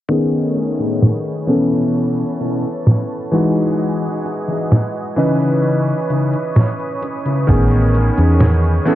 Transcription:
0.09 D#3 A3 B3 C#4 G#4 C#5 G#5 B5 D#6, closed hi-hat
0.56 muted clean electric guitar stroke, closed hi-hat
0.79 A2 B3 C#4 D#4 G#4, closed hi-hat
1.02 snare
1.47 B2 E3 B3 C#4 E4 A4 C#5 A5, closed hi-hat
1.72 closed hi-hat
1.94 closed hi-hat
2.18 closed hi-hat
2.40 B2 C#4 E4 A4, closed hi-hat
2.64 closed hi-hat
2.87 snare, closed hi-hat
3.10 closed hi-hat
3.31 E3 G#3 D#4 F#4 G#4 D#5 F#5 G#5, closed hi-hat
3.56 closed hi-hat
3.79 closed hi-hat
4.03 closed hi-hat
4.24 muted clean electric guitar stroke, closed hi-hat
4.48 E3 D#4 F#4 G#4, closed hi-hat
4.72 snare, closed hi-hat
4.95 closed hi-hat
5.16 C#3 E3 C#4 D#4 E4 B4 C#5 D#5 B5 D#6, closed hi-hat
5.41 closed hi-hat
5.64 closed hi-hat
5.87 closed hi-hat
6.09 C#3 D#4 E4 B4, closed hi-hat
6.33 closed hi-hat
6.56 snare, closed hi-hat
6.80 closed hi-hat
7.02 muted clean electric guitar stroke, closed hi-hat
7.25 C#3 D#4 E4 B4, closed hi-hat
7.47 A1 D#3 B3 C#4 G#4 G#5, kick, closed hi-hat
7.72 closed hi-hat
7.94 muted clean electric guitar stroke, closed hi-hat
8.17 E2 C#4 D#4 G#4 B4, closed hi-hat
8.40 snare, closed hi-hat
8.64 closed hi-hat
8.85 E3 B3 C#4 E4 A4 A5 B5 E6, closed hi-hat

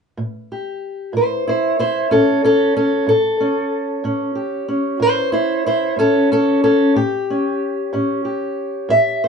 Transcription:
0.17 A2
0.52 G4
1.13 A2 E4 C5
1.47 E4 C5
1.79 E4 C5
2.11 A2 C#4 A4
2.44 C#4 A4
2.77 C#4 A4
3.07 A2 A4
3.40 C#4
4.04 A2 C#4
4.35 G4
4.68 C#4
5.00 A2 E4 C5
5.32 E4 C5
5.66 E4 C5
5.96 A2 C#4 A4
6.32 C#4 A4
6.64 C#4 A4
6.95 A2 G4
7.30 C#4
7.93 A2 C#4
8.25 G4
8.89 A2 E5
9.24 C5

